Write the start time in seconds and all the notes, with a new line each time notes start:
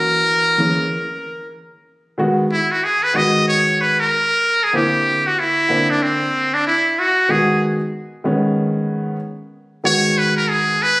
Already playing: E3 A#3 C#4 F#4 A#4
0.58 E3 A#3 C#4 G#4
2.18 D#3 G#3 B3 F#4
2.52 E4
2.72 F#4
2.84 G#4
3.03 B4
3.14 D#3 G#3 B3 F#4 D#5
3.48 C#5
3.81 B4
4.00 A#4
4.64 G#4
4.73 D3 A#3 C4 E4 G4
5.27 F#4
5.39 E4
5.69 D3 A#3 C4 D4
5.90 D4
6.03 C4
6.54 D4
6.67 E4
6.99 F#4
7.28 D#3 G#3 B3 F#4 G#4
8.24 D#3 G#3 B3 C#4
9.84 D#3 G#3 B3 F#4 C#5
10.18 B4
10.37 A#4
10.50 G#4
10.82 B4